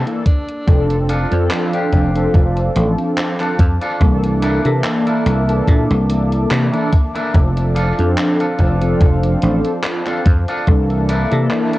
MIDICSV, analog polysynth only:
0, 0, Header, 1, 2, 480
1, 0, Start_track
1, 0, Key_signature, -1, "major"
1, 0, Tempo, 833333
1, 391, Time_signature, 4, 2, 24, 8
1, 6789, End_track
2, 0, Start_track
2, 0, Title_t, "Analog polysynth"
2, 0, Program_c, 0, 90
2, 31, Note_on_c, 0, 52, 77
2, 34, Note_on_c, 0, 58, 73
2, 37, Note_on_c, 0, 62, 70
2, 39, Note_on_c, 0, 69, 86
2, 130, Note_off_c, 0, 52, 0
2, 132, Note_off_c, 0, 58, 0
2, 133, Note_off_c, 0, 62, 0
2, 134, Note_off_c, 0, 69, 0
2, 381, Note_on_c, 0, 53, 84
2, 383, Note_on_c, 0, 60, 74
2, 386, Note_on_c, 0, 62, 76
2, 390, Note_on_c, 0, 69, 89
2, 725, Note_off_c, 0, 53, 0
2, 726, Note_off_c, 0, 60, 0
2, 727, Note_off_c, 0, 62, 0
2, 729, Note_off_c, 0, 69, 0
2, 752, Note_on_c, 0, 53, 100
2, 755, Note_on_c, 0, 60, 88
2, 757, Note_on_c, 0, 62, 91
2, 760, Note_on_c, 0, 69, 110
2, 1205, Note_off_c, 0, 53, 0
2, 1207, Note_off_c, 0, 60, 0
2, 1208, Note_off_c, 0, 62, 0
2, 1209, Note_off_c, 0, 69, 0
2, 1232, Note_on_c, 0, 53, 91
2, 1235, Note_on_c, 0, 60, 84
2, 1238, Note_on_c, 0, 62, 85
2, 1241, Note_on_c, 0, 69, 105
2, 1560, Note_off_c, 0, 53, 0
2, 1562, Note_off_c, 0, 60, 0
2, 1563, Note_off_c, 0, 62, 0
2, 1564, Note_off_c, 0, 69, 0
2, 1581, Note_on_c, 0, 53, 82
2, 1584, Note_on_c, 0, 60, 73
2, 1587, Note_on_c, 0, 62, 73
2, 1589, Note_on_c, 0, 69, 87
2, 1924, Note_off_c, 0, 53, 0
2, 1926, Note_off_c, 0, 60, 0
2, 1927, Note_off_c, 0, 62, 0
2, 1929, Note_off_c, 0, 69, 0
2, 1953, Note_on_c, 0, 53, 77
2, 1956, Note_on_c, 0, 60, 71
2, 1959, Note_on_c, 0, 62, 69
2, 1961, Note_on_c, 0, 69, 84
2, 2051, Note_off_c, 0, 53, 0
2, 2052, Note_off_c, 0, 60, 0
2, 2054, Note_off_c, 0, 62, 0
2, 2055, Note_off_c, 0, 69, 0
2, 2301, Note_on_c, 0, 52, 81
2, 2305, Note_on_c, 0, 58, 77
2, 2308, Note_on_c, 0, 62, 78
2, 2311, Note_on_c, 0, 69, 95
2, 2645, Note_off_c, 0, 52, 0
2, 2647, Note_off_c, 0, 58, 0
2, 2648, Note_off_c, 0, 62, 0
2, 2650, Note_off_c, 0, 69, 0
2, 2673, Note_on_c, 0, 52, 96
2, 2676, Note_on_c, 0, 58, 91
2, 2680, Note_on_c, 0, 62, 89
2, 2683, Note_on_c, 0, 69, 104
2, 3126, Note_off_c, 0, 52, 0
2, 3127, Note_off_c, 0, 58, 0
2, 3129, Note_off_c, 0, 62, 0
2, 3130, Note_off_c, 0, 69, 0
2, 3153, Note_on_c, 0, 52, 90
2, 3157, Note_on_c, 0, 58, 82
2, 3159, Note_on_c, 0, 62, 84
2, 3163, Note_on_c, 0, 69, 103
2, 3481, Note_off_c, 0, 52, 0
2, 3482, Note_off_c, 0, 58, 0
2, 3483, Note_off_c, 0, 62, 0
2, 3485, Note_off_c, 0, 69, 0
2, 3505, Note_on_c, 0, 52, 82
2, 3508, Note_on_c, 0, 58, 75
2, 3511, Note_on_c, 0, 62, 73
2, 3513, Note_on_c, 0, 69, 90
2, 3847, Note_off_c, 0, 52, 0
2, 3848, Note_off_c, 0, 58, 0
2, 3849, Note_off_c, 0, 62, 0
2, 3851, Note_off_c, 0, 69, 0
2, 3875, Note_on_c, 0, 52, 76
2, 3878, Note_on_c, 0, 58, 72
2, 3880, Note_on_c, 0, 62, 72
2, 3883, Note_on_c, 0, 69, 88
2, 3972, Note_off_c, 0, 52, 0
2, 3974, Note_off_c, 0, 58, 0
2, 3974, Note_off_c, 0, 62, 0
2, 3976, Note_off_c, 0, 69, 0
2, 4224, Note_on_c, 0, 53, 84
2, 4226, Note_on_c, 0, 60, 76
2, 4230, Note_on_c, 0, 62, 79
2, 4232, Note_on_c, 0, 69, 93
2, 4566, Note_off_c, 0, 53, 0
2, 4567, Note_off_c, 0, 60, 0
2, 4569, Note_off_c, 0, 62, 0
2, 4570, Note_off_c, 0, 69, 0
2, 4594, Note_on_c, 0, 53, 97
2, 4597, Note_on_c, 0, 60, 88
2, 4601, Note_on_c, 0, 62, 92
2, 4603, Note_on_c, 0, 69, 108
2, 5046, Note_off_c, 0, 53, 0
2, 5047, Note_off_c, 0, 60, 0
2, 5049, Note_off_c, 0, 62, 0
2, 5050, Note_off_c, 0, 69, 0
2, 5074, Note_on_c, 0, 53, 93
2, 5077, Note_on_c, 0, 60, 87
2, 5080, Note_on_c, 0, 62, 83
2, 5083, Note_on_c, 0, 69, 100
2, 5401, Note_off_c, 0, 53, 0
2, 5402, Note_off_c, 0, 60, 0
2, 5404, Note_off_c, 0, 62, 0
2, 5405, Note_off_c, 0, 69, 0
2, 5425, Note_on_c, 0, 53, 82
2, 5428, Note_on_c, 0, 60, 74
2, 5431, Note_on_c, 0, 62, 75
2, 5434, Note_on_c, 0, 69, 91
2, 5767, Note_off_c, 0, 53, 0
2, 5768, Note_off_c, 0, 60, 0
2, 5769, Note_off_c, 0, 62, 0
2, 5771, Note_off_c, 0, 69, 0
2, 5793, Note_on_c, 0, 53, 77
2, 5796, Note_on_c, 0, 60, 72
2, 5799, Note_on_c, 0, 62, 72
2, 5802, Note_on_c, 0, 69, 85
2, 5891, Note_off_c, 0, 53, 0
2, 5893, Note_off_c, 0, 60, 0
2, 5894, Note_off_c, 0, 62, 0
2, 5896, Note_off_c, 0, 69, 0
2, 6142, Note_on_c, 0, 52, 85
2, 6145, Note_on_c, 0, 58, 76
2, 6148, Note_on_c, 0, 62, 78
2, 6151, Note_on_c, 0, 69, 94
2, 6485, Note_off_c, 0, 52, 0
2, 6487, Note_off_c, 0, 58, 0
2, 6488, Note_off_c, 0, 62, 0
2, 6490, Note_off_c, 0, 69, 0
2, 6512, Note_on_c, 0, 52, 94
2, 6515, Note_on_c, 0, 58, 89
2, 6518, Note_on_c, 0, 62, 88
2, 6521, Note_on_c, 0, 69, 110
2, 6789, Note_off_c, 0, 52, 0
2, 6789, Note_off_c, 0, 58, 0
2, 6789, Note_off_c, 0, 62, 0
2, 6789, Note_off_c, 0, 69, 0
2, 6789, End_track
0, 0, End_of_file